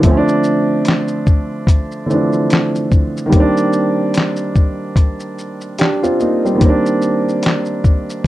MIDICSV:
0, 0, Header, 1, 3, 480
1, 0, Start_track
1, 0, Tempo, 821918
1, 21, Time_signature, 4, 2, 24, 8
1, 4830, End_track
2, 0, Start_track
2, 0, Title_t, "Upright piano"
2, 0, Program_c, 0, 0
2, 0, Control_c, 0, 64, 127
2, 0, Note_on_c, 0, 50, 69
2, 1, Note_on_c, 0, 53, 75
2, 21, Note_on_c, 0, 57, 71
2, 29, Control_c, 0, 64, 0
2, 41, Note_on_c, 0, 60, 72
2, 62, Note_on_c, 0, 61, 67
2, 86, Note_off_c, 0, 61, 0
2, 100, Note_on_c, 0, 62, 90
2, 128, Control_c, 0, 64, 127
2, 1179, Note_off_c, 0, 50, 0
2, 1188, Note_off_c, 0, 53, 0
2, 1198, Note_off_c, 0, 57, 0
2, 1204, Note_on_c, 0, 50, 61
2, 1208, Note_off_c, 0, 60, 0
2, 1211, Note_on_c, 0, 52, 44
2, 1222, Note_on_c, 0, 57, 53
2, 1232, Note_on_c, 0, 60, 54
2, 1235, Note_off_c, 0, 62, 0
2, 1243, Note_on_c, 0, 62, 61
2, 1251, Note_on_c, 0, 53, 54
2, 1261, Note_off_c, 0, 52, 0
2, 1903, Note_on_c, 0, 51, 80
2, 1924, Note_on_c, 0, 55, 66
2, 1933, Note_off_c, 0, 50, 0
2, 1942, Note_off_c, 0, 57, 0
2, 1945, Note_on_c, 0, 58, 66
2, 1947, Note_off_c, 0, 60, 0
2, 1949, Control_c, 0, 64, 0
2, 1952, Note_off_c, 0, 62, 0
2, 1956, Note_off_c, 0, 53, 0
2, 1965, Note_on_c, 0, 60, 70
2, 1986, Note_on_c, 0, 62, 90
2, 2039, Control_c, 0, 64, 127
2, 3349, Note_off_c, 0, 55, 0
2, 3360, Note_off_c, 0, 58, 0
2, 3370, Note_off_c, 0, 60, 0
2, 3376, Note_off_c, 0, 62, 0
2, 3381, Note_on_c, 0, 67, 61
2, 3385, Note_on_c, 0, 62, 54
2, 3514, Note_off_c, 0, 67, 0
2, 3516, Note_off_c, 0, 62, 0
2, 3521, Note_on_c, 0, 65, 74
2, 3525, Note_on_c, 0, 60, 61
2, 3616, Note_off_c, 0, 65, 0
2, 3618, Note_off_c, 0, 60, 0
2, 3623, Note_on_c, 0, 63, 60
2, 3627, Note_on_c, 0, 58, 54
2, 3755, Note_off_c, 0, 63, 0
2, 3758, Note_off_c, 0, 58, 0
2, 3765, Note_on_c, 0, 60, 60
2, 3769, Note_on_c, 0, 55, 49
2, 3816, Note_off_c, 0, 51, 0
2, 3824, Note_on_c, 0, 51, 72
2, 3837, Note_off_c, 0, 55, 0
2, 3846, Note_on_c, 0, 55, 65
2, 3865, Note_on_c, 0, 58, 72
2, 3870, Control_c, 0, 64, 0
2, 3878, Note_off_c, 0, 60, 0
2, 3886, Note_on_c, 0, 60, 67
2, 3906, Note_on_c, 0, 62, 89
2, 3961, Control_c, 0, 64, 127
2, 4830, Note_off_c, 0, 51, 0
2, 4830, Note_off_c, 0, 55, 0
2, 4830, Note_off_c, 0, 58, 0
2, 4830, Note_off_c, 0, 60, 0
2, 4830, Note_off_c, 0, 62, 0
2, 4830, End_track
3, 0, Start_track
3, 0, Title_t, "Drums"
3, 19, Note_on_c, 9, 42, 77
3, 19, Note_on_c, 9, 82, 65
3, 20, Note_on_c, 9, 36, 113
3, 77, Note_off_c, 9, 42, 0
3, 77, Note_off_c, 9, 82, 0
3, 79, Note_off_c, 9, 36, 0
3, 165, Note_on_c, 9, 82, 47
3, 224, Note_off_c, 9, 82, 0
3, 254, Note_on_c, 9, 82, 43
3, 313, Note_off_c, 9, 82, 0
3, 496, Note_on_c, 9, 42, 62
3, 496, Note_on_c, 9, 82, 61
3, 517, Note_on_c, 9, 38, 111
3, 522, Note_on_c, 9, 39, 79
3, 555, Note_off_c, 9, 42, 0
3, 555, Note_off_c, 9, 82, 0
3, 575, Note_off_c, 9, 38, 0
3, 581, Note_off_c, 9, 39, 0
3, 629, Note_on_c, 9, 82, 46
3, 688, Note_off_c, 9, 82, 0
3, 741, Note_on_c, 9, 36, 107
3, 741, Note_on_c, 9, 82, 47
3, 799, Note_off_c, 9, 36, 0
3, 799, Note_off_c, 9, 82, 0
3, 976, Note_on_c, 9, 36, 103
3, 983, Note_on_c, 9, 42, 75
3, 983, Note_on_c, 9, 82, 72
3, 1034, Note_off_c, 9, 36, 0
3, 1042, Note_off_c, 9, 42, 0
3, 1042, Note_off_c, 9, 82, 0
3, 1118, Note_on_c, 9, 82, 38
3, 1176, Note_off_c, 9, 82, 0
3, 1227, Note_on_c, 9, 82, 43
3, 1286, Note_off_c, 9, 82, 0
3, 1359, Note_on_c, 9, 82, 43
3, 1417, Note_off_c, 9, 82, 0
3, 1461, Note_on_c, 9, 42, 55
3, 1461, Note_on_c, 9, 82, 53
3, 1478, Note_on_c, 9, 38, 115
3, 1483, Note_on_c, 9, 39, 89
3, 1520, Note_off_c, 9, 42, 0
3, 1520, Note_off_c, 9, 82, 0
3, 1536, Note_off_c, 9, 38, 0
3, 1542, Note_off_c, 9, 39, 0
3, 1607, Note_on_c, 9, 82, 49
3, 1665, Note_off_c, 9, 82, 0
3, 1703, Note_on_c, 9, 36, 100
3, 1703, Note_on_c, 9, 82, 45
3, 1761, Note_off_c, 9, 82, 0
3, 1762, Note_off_c, 9, 36, 0
3, 1851, Note_on_c, 9, 82, 40
3, 1910, Note_off_c, 9, 82, 0
3, 1942, Note_on_c, 9, 36, 109
3, 1942, Note_on_c, 9, 42, 65
3, 1942, Note_on_c, 9, 82, 72
3, 2000, Note_off_c, 9, 42, 0
3, 2000, Note_off_c, 9, 82, 0
3, 2001, Note_off_c, 9, 36, 0
3, 2086, Note_on_c, 9, 82, 49
3, 2145, Note_off_c, 9, 82, 0
3, 2177, Note_on_c, 9, 82, 48
3, 2236, Note_off_c, 9, 82, 0
3, 2418, Note_on_c, 9, 42, 60
3, 2418, Note_on_c, 9, 82, 67
3, 2439, Note_on_c, 9, 38, 117
3, 2444, Note_on_c, 9, 39, 94
3, 2477, Note_off_c, 9, 42, 0
3, 2477, Note_off_c, 9, 82, 0
3, 2497, Note_off_c, 9, 38, 0
3, 2503, Note_off_c, 9, 39, 0
3, 2548, Note_on_c, 9, 82, 47
3, 2607, Note_off_c, 9, 82, 0
3, 2660, Note_on_c, 9, 82, 46
3, 2661, Note_on_c, 9, 36, 104
3, 2718, Note_off_c, 9, 82, 0
3, 2719, Note_off_c, 9, 36, 0
3, 2896, Note_on_c, 9, 36, 96
3, 2901, Note_on_c, 9, 42, 69
3, 2901, Note_on_c, 9, 82, 66
3, 2954, Note_off_c, 9, 36, 0
3, 2959, Note_off_c, 9, 42, 0
3, 2959, Note_off_c, 9, 82, 0
3, 3037, Note_on_c, 9, 82, 43
3, 3095, Note_off_c, 9, 82, 0
3, 3144, Note_on_c, 9, 82, 42
3, 3203, Note_off_c, 9, 82, 0
3, 3276, Note_on_c, 9, 82, 40
3, 3334, Note_off_c, 9, 82, 0
3, 3378, Note_on_c, 9, 42, 59
3, 3378, Note_on_c, 9, 82, 55
3, 3395, Note_on_c, 9, 38, 97
3, 3400, Note_on_c, 9, 39, 88
3, 3437, Note_off_c, 9, 42, 0
3, 3437, Note_off_c, 9, 82, 0
3, 3453, Note_off_c, 9, 38, 0
3, 3459, Note_off_c, 9, 39, 0
3, 3526, Note_on_c, 9, 82, 46
3, 3585, Note_off_c, 9, 82, 0
3, 3621, Note_on_c, 9, 82, 44
3, 3679, Note_off_c, 9, 82, 0
3, 3771, Note_on_c, 9, 82, 45
3, 3830, Note_off_c, 9, 82, 0
3, 3861, Note_on_c, 9, 42, 68
3, 3861, Note_on_c, 9, 82, 72
3, 3862, Note_on_c, 9, 36, 104
3, 3919, Note_off_c, 9, 42, 0
3, 3919, Note_off_c, 9, 82, 0
3, 3920, Note_off_c, 9, 36, 0
3, 4006, Note_on_c, 9, 82, 45
3, 4064, Note_off_c, 9, 82, 0
3, 4098, Note_on_c, 9, 82, 47
3, 4157, Note_off_c, 9, 82, 0
3, 4256, Note_on_c, 9, 82, 46
3, 4314, Note_off_c, 9, 82, 0
3, 4338, Note_on_c, 9, 42, 64
3, 4338, Note_on_c, 9, 82, 57
3, 4358, Note_on_c, 9, 38, 118
3, 4364, Note_on_c, 9, 39, 90
3, 4396, Note_off_c, 9, 42, 0
3, 4396, Note_off_c, 9, 82, 0
3, 4417, Note_off_c, 9, 38, 0
3, 4422, Note_off_c, 9, 39, 0
3, 4469, Note_on_c, 9, 82, 46
3, 4528, Note_off_c, 9, 82, 0
3, 4580, Note_on_c, 9, 82, 46
3, 4581, Note_on_c, 9, 36, 96
3, 4639, Note_off_c, 9, 36, 0
3, 4639, Note_off_c, 9, 82, 0
3, 4729, Note_on_c, 9, 82, 49
3, 4787, Note_off_c, 9, 82, 0
3, 4830, End_track
0, 0, End_of_file